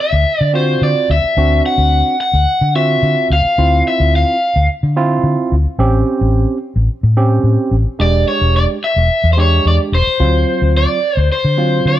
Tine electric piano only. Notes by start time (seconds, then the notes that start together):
0.53 C4 F4 F#4
1.37 C4 D4 F#4
2.75 C4 F4 F#4
3.58 C4 E4 F4
4.96 C4 E4 F4
5.79 C4 C#4 G4
7.17 C4 C#4 G4
7.99 G#3 D4 G4
9.37 G#3 D4 G4
10.20 F#3 C4 F4
11.58 F#3 C4 F4